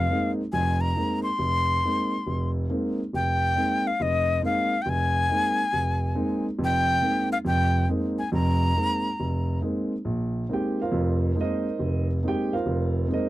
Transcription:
Already playing: flute F5
0.10 grand piano G#3 A#3 C4 D#4
0.52 grand piano F1 F2, flute G#5
0.81 flute A#5
0.96 grand piano G#3 A#3 C4 D#4
1.23 flute C6
1.39 grand piano F1
1.84 grand piano G#3 A#3 C4 D#4
2.27 grand piano F1
2.69 grand piano G#3 A#3 C4 D#4
3.13 grand piano F1, flute G5
3.56 grand piano G#3 A#3 C4 D#4
3.87 flute F5
4.00 grand piano F1, flute D#5
4.42 grand piano G#3 A#3 C4 D#4, flute F5
4.82 flute G5
4.86 grand piano F1, flute G#5
5.29 grand piano G#3 A#3 C4 D#4
5.73 grand piano F1
6.15 grand piano G#3 A#3 C4 D#4
6.58 grand piano F1 F2
6.64 flute G5
7.00 grand piano G#3 A#3 C4 D#4
7.32 flute F5
7.45 grand piano F1 F2, flute G5
7.89 grand piano G#3 A#3 C4 D#4
8.19 flute G#5
8.32 grand piano F1 F2, flute A#5
8.75 grand piano G#3 A#3 C4 D#4
9.20 grand piano F1
9.61 grand piano G#3 A#3 C4 D#4
10.05 grand piano A#1
10.49 grand piano G#3 A#3 C4 D#4
10.53 grand piano G4 G5
10.82 grand piano F4 A#4 C5 F5
10.92 grand piano F1 F2
11.35 grand piano G#3 A#3 C4 D#4
11.41 grand piano D#4 A#4 C5 D#5
11.79 grand piano F1
12.23 grand piano G#3 A#3 C4 D#4
12.28 grand piano G4 G5
12.53 grand piano F4 A#4 C5 F5
12.66 grand piano F1
13.08 grand piano G#3 A#3 C4 D#4
13.13 grand piano D#4 A#4 C5 D#5

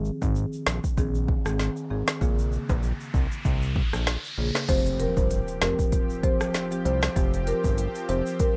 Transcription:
Already playing: analog synth bass G#1, marimba D#3 C4 G#4, riser
0.05 shaker
0.22 analog synth bass G#1, marimba D#3 C4 G#4, kick, shaker
0.36 shaker
0.53 shaker
0.67 analog synth bass A#1, cross-stick, snare, shaker
0.84 kick, shaker
0.97 analog synth bass A#1, marimba D#3 C4 G#4, kick, shaker
1.15 shaker
1.28 kick
1.46 analog synth bass G#1, marimba D#3 C4 G#4, cross-stick, shaker
1.59 snare, shaker
1.77 shaker
1.90 analog synth bass G#1, marimba D#3 C4 G#4
2.07 cross-stick, snare, shaker
2.21 analog synth bass A#1, marimba C#3 A#3 G#4, kick, shaker
2.39 shaker
2.52 shaker
2.69 analog synth bass A#1, kick, high timbale, shaker
2.83 shaker
3.00 shaker
3.14 analog synth bass C2, kick, shaker
3.32 shaker
3.45 analog synth bass C2, kick, shaker
3.62 shaker
3.76 kick
3.93 analog synth bass A#1, cross-stick, shaker
4.07 cross-stick, snare, shaker
4.24 shaker
4.38 analog synth bass A#1, marimba C#3 A#3 G#4
4.55 snare, high timbale, shaker
4.68 analog synth bass F1, marimba F3 C4 G4 C5, analog synth pad F3 C4 G4, kick, closed hi-hat, crash, impact, shaker
4.86 closed hi-hat, shaker
5.00 marimba A#4, closed hi-hat, shaker
5.17 analog synth bass G1, marimba C5, kick, shaker
5.30 closed hi-hat, shaker
5.48 closed hi-hat, shaker
5.61 analog synth bass F1, marimba F3 C4 G4 A#4, cross-stick, snare, closed hi-hat, shaker
5.79 kick, shaker
5.92 kick, closed hi-hat, shaker
6.10 shaker
6.23 marimba F3 C4 G4 C5, kick, closed hi-hat
6.41 cross-stick, shaker
6.54 snare, closed hi-hat, shaker
6.71 marimba F3 C4 G4, closed hi-hat, shaker
6.85 analog synth bass C2, marimba C5, closed hi-hat
7.02 cross-stick, snare, shaker
7.16 analog synth bass F1, marimba F3 C4 G4, kick, closed hi-hat, shaker
7.34 closed hi-hat, shaker
7.47 marimba A#4, closed hi-hat, shaker
7.64 analog synth bass G1, kick, shaker
7.78 closed hi-hat, shaker
7.95 closed hi-hat, shaker
8.09 analog synth bass F1, marimba F3 C4 G4 C5, closed hi-hat, shaker
8.26 shaker
8.39 marimba A#4, kick, closed hi-hat, shaker

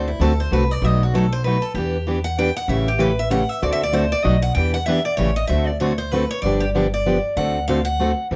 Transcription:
Already playing: upright bass D2
0.08 steel-string acoustic guitar E4
0.20 upright bass D2, steel-string acoustic guitar D3 A3 C4 F#4 A4
0.40 steel-string acoustic guitar C5
0.51 upright bass C2, steel-string acoustic guitar D3 A3 C4 F#4 A4 B4
0.71 steel-string acoustic guitar D5
0.82 upright bass B1, steel-string acoustic guitar B2 F#3 A3 D#4 F#4 D#5
1.03 steel-string acoustic guitar F#4
1.14 steel-string acoustic guitar B2 F#3 A3 D#4 F#4 A4
1.33 steel-string acoustic guitar C5
1.44 steel-string acoustic guitar B2 F#3 A3 D#4 F#4 B4
1.62 steel-string acoustic guitar A4
1.74 upright bass E2, steel-string acoustic guitar E3 B3 D4 G4
2.07 steel-string acoustic guitar E3 B3 D4 G4
2.24 steel-string acoustic guitar F#5
2.38 steel-string acoustic guitar E3 B3 D4 G4 G5
2.56 steel-string acoustic guitar F#5
2.68 upright bass A1, steel-string acoustic guitar C#3 E3 A3 C#4 G4 E5
2.88 steel-string acoustic guitar G4
2.98 steel-string acoustic guitar C#3 E3 A3 C#4 G4 B4
3.19 steel-string acoustic guitar E5
3.30 steel-string acoustic guitar C#3 E3 A3 C#4 G4 F#5
3.49 steel-string acoustic guitar E5
3.62 upright bass D2, steel-string acoustic guitar D3 A3 C4 F#4 A4 D5
3.73 steel-string acoustic guitar E5
3.83 steel-string acoustic guitar D5
3.92 steel-string acoustic guitar D3 A3 C4 F#4 A4 C5
4.12 steel-string acoustic guitar D5
4.23 upright bass B1, steel-string acoustic guitar B2 F#3 A3 D#4 F#4 D#5
4.42 steel-string acoustic guitar F#5
4.55 upright bass E2, steel-string acoustic guitar E3 B3 D4 G4 G5
4.74 steel-string acoustic guitar F#5
4.86 steel-string acoustic guitar E3 B3 D4 G4 E5
5.05 steel-string acoustic guitar D5
5.17 upright bass A1, steel-string acoustic guitar C#3 E3 A3 C#4 G4 C#5
5.36 steel-string acoustic guitar D#5
5.47 upright bass D2, steel-string acoustic guitar D3 A3 C4 F#4 A4 E5
5.67 steel-string acoustic guitar D5
5.80 steel-string acoustic guitar D3 A3 C4 F#4 A4 C#5
5.98 steel-string acoustic guitar C5
6.11 steel-string acoustic guitar D3 A3 C4 F#4 A4 B4
6.31 steel-string acoustic guitar C#5
6.42 upright bass G1, steel-string acoustic guitar D3 F3 B3 D4 G4 D5
6.60 steel-string acoustic guitar G4
6.75 steel-string acoustic guitar D3 F3 B3 D4 G4
6.94 steel-string acoustic guitar D5
7.06 steel-string acoustic guitar D3 F3 B3 D4 G4
7.37 upright bass D2, steel-string acoustic guitar D3 A3 C4 F#4 A4 F#5
7.68 steel-string acoustic guitar D3 A3 C4 F#4 A4 F5
7.85 steel-string acoustic guitar F#5
7.99 steel-string acoustic guitar D3 A3 C4 F#4 A4
8.31 upright bass A1, steel-string acoustic guitar E3 G3 C4 E4 A4

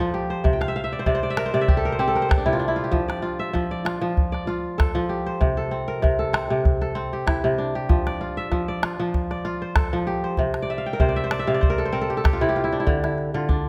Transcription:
Already playing: kora F4 A4 C5 D5
0.00 kora F3
0.14 kora G4
0.30 kora C5
0.44 kora C3, calabash thump, calabash click
0.53 kora G5
0.61 kora F5, calabash click
0.68 kora E5
0.76 kora F5
0.84 kora E5
0.93 kora D5
0.99 kora C5
1.06 kora C3 D5, calabash thump
1.15 kora C5
1.23 kora D5
1.30 kora E5
1.37 kora A#4, calabash click
1.46 kora C5
1.54 kora C3 D5
1.61 kora E5
1.68 kora G4, calabash thump, calabash click
1.77 kora A4
1.85 kora A#4
1.92 kora C5
1.99 kora C4 G4, calabash click
2.08 kora A4
2.15 kora A#4, calabash click
2.22 kora C5
2.29 kora C4, calabash thump, calabash click
2.38 kora D4
2.46 kora C3 E4
2.53 kora F4
2.60 kora D4, calabash click
2.68 kora E4
2.76 kora F4
2.84 kora G4
2.92 kora F3, calabash thump, calabash click
3.08 kora D5, calabash click
3.22 kora F4
3.39 kora E5
3.53 kora F3, calabash thump, calabash click
3.71 kora D5
3.85 kora F4, calabash click
4.01 kora F3
4.17 calabash thump
4.32 kora D5, calabash click
4.47 kora F4, calabash click
4.78 kora A4, calabash thump, calabash click
4.95 kora F3
5.09 kora G4
5.26 kora C5
5.41 kora C3, calabash thump, calabash click
5.57 kora A4
5.71 kora C4
5.88 kora A#4
6.02 kora C3, calabash thump, calabash click
6.19 kora A4
6.33 kora C4, calabash click
6.50 kora C3
6.65 calabash thump
6.81 kora A4, calabash click
6.95 kora C4, calabash click
7.13 kora G4
7.27 kora E4, calabash thump, calabash click
7.44 kora C3
7.58 kora D4
7.75 kora G4
7.89 kora F3, calabash thump, calabash click
8.07 kora D5, calabash click
8.21 kora F4
8.37 kora E5
8.52 kora F3, calabash thump, calabash click
8.68 kora D5
8.83 kora F4, calabash click
9.00 kora F3
9.14 calabash thump
9.31 kora D5, calabash click
9.45 kora F4, calabash click
9.62 kora C5
9.76 kora A4, calabash thump, calabash click
9.93 kora F3
10.07 kora G4
10.24 kora C5
10.37 kora C3, calabash thump
10.54 calabash click
10.62 kora D5
10.70 kora E5
10.78 kora F5
10.86 kora G5
10.93 kora A#4
11.00 kora C3 C5, calabash thump
11.09 kora D5
11.16 kora E5
11.24 kora C5
11.31 kora D5, calabash click
11.39 kora E5
11.47 kora C3 F5
11.54 kora D5
11.61 kora C5, calabash thump
11.70 kora A#4
11.78 kora A4, calabash click
11.85 kora C5
11.92 kora C4 A#4
12.01 kora A4
12.10 kora G4
12.17 kora A4
12.24 kora G4, calabash thump, calabash click
12.33 kora F4
12.41 kora C3 E4, calabash click
12.49 kora G4
12.56 kora F4, calabash click
12.64 kora E4
12.72 kora D4
12.80 kora E4
12.87 kora D3, calabash thump
13.03 kora E4, calabash click
13.18 calabash click
13.34 kora D3 F4
13.49 kora D4, calabash thump

